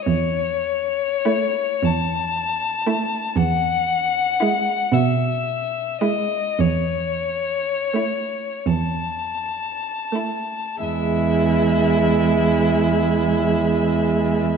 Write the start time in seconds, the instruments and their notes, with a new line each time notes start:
0.07 cello E2, violin C#5
1.25 viola A3, violin E4
1.82 cello E2, violin A5
2.87 viola A3, violin E4
3.36 cello E2, violin F#5
4.40 viola G#3, violin E4
4.92 cello B2, violin E5
6.01 viola G#3, violin E4 D#5
6.59 cello E2, violin C#5
7.94 viola A3, violin E4
8.66 cello E2, violin A5
10.13 viola A3, violin E4
10.81 cello E2, viola G#3, violin E4 E5